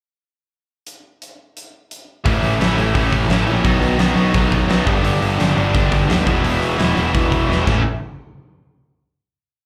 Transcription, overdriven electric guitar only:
2.25 A2 E3 A3 C#4 E4
2.60 A2 E3 A3 C#4 E4
2.77 A2 E3 A3 C#4 E4
2.94 A2 E3 A3 C#4 E4
3.29 A2 E3 A3 C#4 E4
3.46 A2 E3 A3 C#4 E4
3.64 B2 D#3 F#3 B3 D#4
3.99 B2 D#3 F#3 B3 D#4
4.16 B2 D#3 F#3 B3 D#4
4.33 B2 D#3 F#3 B3 D#4
4.68 B2 D#3 F#3 B3 D#4
4.85 G2 D3 G3 B3 D4
5.03 G2 D3 G3 B3 D4
5.38 G2 D3 G3 B3 D4
5.56 G2 D3 G3 B3 D4
5.74 G2 D3 G3 B3 D4
6.07 G2 D3 G3 B3 D4
6.26 E3 G#3 B3 E4
6.43 E3 G#3 B3 E4
6.78 E3 G#3 B3 E4
6.95 E3 G#3 B3 E4
7.13 E3 G#3 B3 E4
7.48 E3 G#3 B3 E4
7.66 A2 E3 A3 C#4 E4

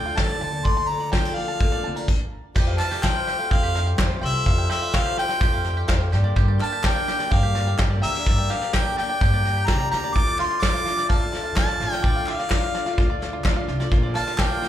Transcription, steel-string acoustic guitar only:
Already playing: D3 F3 A3 D4 F4
0.17 A2 D4
0.41 D3 A4
0.66 A3
0.89 A4
1.13 F3 C4
1.25 D4
1.39 A4
1.62 A3
1.85 D3 C4
1.97 D4

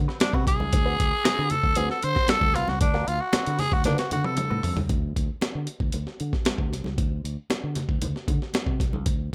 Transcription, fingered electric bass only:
0.34 C3
0.47 C2
0.60 C#2
0.73 D2
1.00 D2
1.26 muted fingered electric bass stroke
1.39 D3
1.64 D2
1.77 D2
2.04 D3
2.42 D2
2.55 C2
2.69 C#2
2.81 D2
3.08 D2
3.34 muted fingered electric bass stroke
3.47 D3
3.72 D2
3.86 D3
4.12 D3
4.25 C3
4.51 A2
4.64 F2
4.77 C#2
4.90 D2
5.17 D2
5.42 muted fingered electric bass stroke
5.55 D3
5.80 D2
5.94 D2
6.20 D3
6.59 D2
6.72 C2
6.85 C#2
6.98 D2
7.24 D2
7.51 muted fingered electric bass stroke
7.64 D3
7.89 D2
8.02 D2
8.28 D3
8.67 C3
8.80 C2
8.94 C#2
9.06 D2

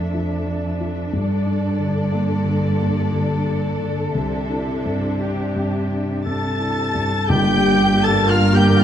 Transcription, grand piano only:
Already playing: F2 F3 A3 D4
0.14 F3
0.47 D4
0.80 F3
1.13 G2
1.46 D4
1.79 D3
2.12 A#3
2.44 D3
2.79 A#3
3.12 D3
3.45 D4
3.80 D3
4.15 C2
4.51 E4
4.86 G2
5.20 D4
5.56 G2
5.92 D4
6.27 G2
6.60 E4
6.95 G2
7.30 G2
7.54 A#3
7.78 D4
8.04 A#3
8.30 A#4
8.55 A#3
8.80 D4

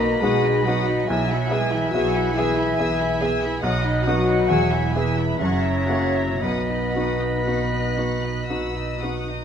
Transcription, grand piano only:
Already playing: B1 B3 D#4 F#4
0.23 B3 D#4 F#4
0.67 B3 D#4 F#4
1.10 B1
1.51 B3 E4 G#4
1.94 B3 E4 G#4
2.38 B3 E4 G#4
2.79 B3 E4 G#4
3.21 B3 E4 G#4
3.63 B1
4.07 B3 D#4 F#4
4.50 E2
4.96 B3 E4 G#4
5.41 F#2
5.89 A#3 E4 F#4
6.43 B1
6.96 B3 D#4 F#4
7.47 B3 D#4 F#4
7.97 B3 D#4 F#4
8.50 B3 D#4 F#4
9.02 B3 D#4 F#4

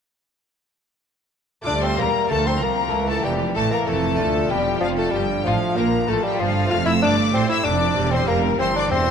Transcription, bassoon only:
1.67 D4
1.83 C4
1.98 A#3
2.31 A3
2.47 C4
2.63 A#3
3.09 A3
3.24 G3
3.56 A3
3.72 A#3
3.87 A3
4.51 G3
4.81 F3
4.98 A3
5.12 G3
5.44 F3
5.76 A#3
6.08 A3
6.24 G3
6.39 F3
6.70 F4
6.86 E4
7.02 D4
7.34 C4
7.49 E4
7.64 D4
8.11 C4
8.28 A#3
8.59 C4
8.76 D4
8.91 C4

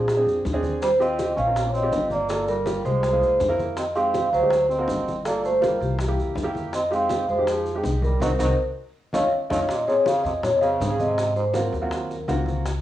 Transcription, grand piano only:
0.17 C4 D4 G#4
0.53 C4 D4 G#4
0.99 C4 F4 G4
1.46 C4 F4 A#4
1.82 C4 F4 G4
2.29 A#3 F4 A4
2.66 A#3 F4 G4
3.12 A#3 E4 G#4
3.49 A#3 E4 A#4
3.95 G#3 D#4 G4
4.42 G#3 D#4 G4
4.79 A#3 C4 F#4
5.25 A#3 F4 A4
5.61 A#3 F4 C5
6.08 A#3 E4 G4
6.43 A#3 E4 G4
6.91 G#3 D#4 G4
7.38 G#3 D#4 G4
7.75 G#3 D#4 G4
8.21 C4 D#4 F#4
8.39 C4 D#4 F#4
9.13 C#4 D#4 F4
9.50 C#4 D#4 F4
9.87 C4 C#4 G#4
10.61 C4 C#4 G#4
10.81 C4 C#4 G#4
10.89 C4 C#4 G#4
11.54 A#3 C4 F4 F#4
11.82 A#3 C4 F4 F#4
12.28 A#3 C4 F4 F#4

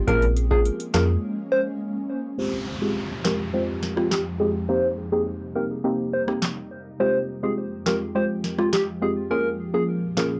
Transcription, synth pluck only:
0.08 A#3 C#4 F4 G#4
0.51 A#3 C#4 F4 G#4
0.94 A#3 C#4 F4 G#4
2.38 G#3 C4 F4 G4
2.81 G#3 C4 F4 G4
3.25 G#3 C4 F4 G4
3.53 G#3 C4 F4 G4
3.97 G#3 C4 F4 G4
4.40 G#3 C4 F4 G4
4.69 A#3 C4 D#4 G4
5.12 A#3 C4 D#4 G4
5.55 A#3 C4 D#4 G4
5.84 A#3 C4 D#4 G4
6.27 A#3 C4 D#4 G4
7.00 G#3 C4 F4 G4
7.43 G#3 C4 F4 G4
7.86 G#3 C4 F4 G4
8.15 G#3 C4 F4 G4
8.58 G#3 C4 F4 G4
9.02 G#3 C4 F4 G4
9.30 A#3 C#4 F4 G#4
9.74 A#3 C#4 F4 G#4
10.17 A#3 C#4 F4 G#4

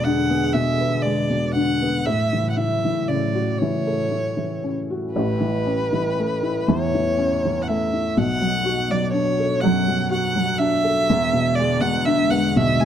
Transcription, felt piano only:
Already playing: E2 B2 G#3
0.06 D3
0.30 B3
0.54 B2
0.80 B4
1.05 G#3
1.30 B2
1.56 D3
1.82 B3
2.06 A2
2.33 E3
2.57 E4
2.85 E3
3.09 C#3
3.34 F#4
3.62 E3
3.87 A4
4.11 E4
4.37 E3
4.64 C#4
4.90 F#4
5.16 A1 A2
5.40 E3
5.66 C#4
5.93 E3
6.18 A3
6.43 E4
6.68 E2 E3
6.95 E3
7.18 C#4
7.45 E3
7.68 A3
7.93 E4
8.17 B1 B2
8.41 F#3
8.65 F#4
8.90 F#3
9.13 D4
9.39 A4
9.63 F#2 F#3
9.88 F#3
10.10 F#4
10.36 F#3
10.59 D4
10.84 A4
11.09 E1 E2
11.33 B2
11.59 G#3
11.81 B2
12.06 D3
12.31 B3
12.56 B1 B2
12.81 B2

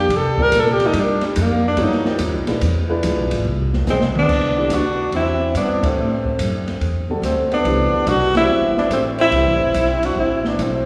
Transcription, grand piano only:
0.39 G3 C4 F4 A#4 D5
1.77 F#3 B3 E4 A4 C#5
2.05 G3 C4 F4 A#4 D5
2.47 G#3 D4 E4 F4 B4
2.90 G#3 D4 E4 F4 B4
4.57 E3 A3 D4 G4 B4
7.10 D3 G3 C4 F#4 A4
7.66 E3 A3 D4 G4 B4
8.35 E3 A3 D4 G4 B4
9.33 E3 A3 D4 G4 B4

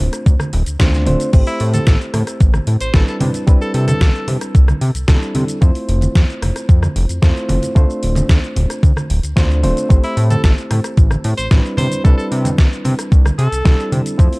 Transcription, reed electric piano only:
Already playing: A3 C4 D4 F4 C5
0.79 A3 C4 D4 F4 C5
1.06 A3 C4 D4 F4 C5
1.33 A3 C4 E4 G4 C5
2.94 G3 C4 D4 E4 B4
3.46 G3 C4 D4 E4 B4
5.08 G3 C4 D4 E4 A4
5.61 A3 C4 E4 F4 C5
7.22 A3 C4 E4 F4 C5
7.75 A3 C4 D4 F4 C5
9.36 A3 C4 D4 F4 C5
9.63 A3 C4 D4 F4 C5
9.89 A3 C4 E4 G4 C5
11.51 G3 C4 D4 E4 B4
12.04 G3 C4 D4 E4 B4
13.65 G3 C4 D4 E4 A4
14.18 A3 C4 E4 F4 C5

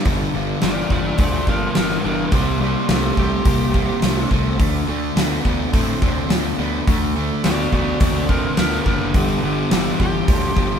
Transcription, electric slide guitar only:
0.64 F4 D5
0.92 F4 D5
1.20 F4 D5
1.49 D4 A#4
1.77 D4 A#4
2.05 D4 A#4
2.32 A#3 G4
2.61 A#3 G4
2.91 A#3 G4
3.19 G4
7.45 F#4 D5
7.73 F#4 D5
8.01 F#4 D5
8.29 D4 A#4
8.58 D4 A#4
8.87 D4 A#4
9.16 B3 G4
9.44 B3 G4
9.72 B3 G4
10.02 G4

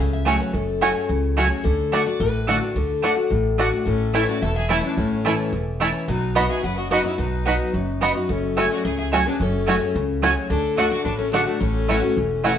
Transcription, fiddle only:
3.87 C#4
4.14 E4
4.29 F#4
4.43 A4
4.56 G#4
4.70 E4
4.85 D4
4.99 C#4
6.08 D#4
6.36 F#4
6.49 G#4
6.64 B4
6.78 F#4
6.92 D#4
7.06 E4
7.19 D#4
8.30 C#4
8.57 F#4
8.71 F#4
8.86 G#4
8.99 G#4
9.13 F#4
9.27 D4
9.41 C#4
10.50 D4
10.77 F#4
10.90 F#4
11.04 D4
11.19 C#4
11.32 D4
11.47 A3
11.60 C#4

